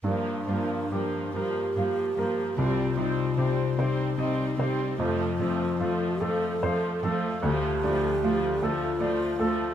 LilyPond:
<<
  \new Staff \with { instrumentName = "Grand piano" } { \time 6/8 \key g \minor \tempo 4. = 49 g,8 f'8 g'8 bes'8 f''8 bes'8 | c,8 ees'8 g'8 c''8 ees''8 c''8 | f,8 c'8 f'8 a'8 c''8 a'8 | d,8 d'8 f'8 a'8 d''8 a'8 | }
  \new Staff \with { instrumentName = "Harp" } { \time 6/8 \key g \minor g,8 g8 bes'8 g'8 f''8 g'8 | c8 g8 c''8 g'8 g''8 g'8 | f8 f'8 a'8 f''8 c'''8 f''8 | d8 a8 d''8 a'8 f''8 a'8 | }
  \new Staff \with { instrumentName = "Alto flute" } { \time 6/8 \key g \minor d'4. g'4. | f'4. ees'4. | f'4. a'4 r8 | g'4. f'4. | }
  \new Staff \with { instrumentName = "Viola section" } { \clef bass \time 6/8 \key g \minor <f bes>8 <f bes>8 <f bes>8 <f bes>8 <f bes>8 <f bes>8 | <g c'>8 <g c'>8 <g c'>8 <g c'>8 <g c'>8 <g c'>8 | <f a>8 <f a>8 <f a>8 <f a>8 <f a>8 <f a>8 | <f a>8 <f a>8 <f a>8 <f a>8 <f a>8 <f a>8 | }
  \new Staff \with { instrumentName = "Cello section" } { \clef bass \time 6/8 \key g \minor g,8 g,8 g,8 g,8 g,8 g,8 | c8 c8 c8 c8 c8 c8 | f,8 f,8 f,8 f,8 f,8 f,8 | d,8 d,8 d,8 d,8 d,8 d,8 | }
>>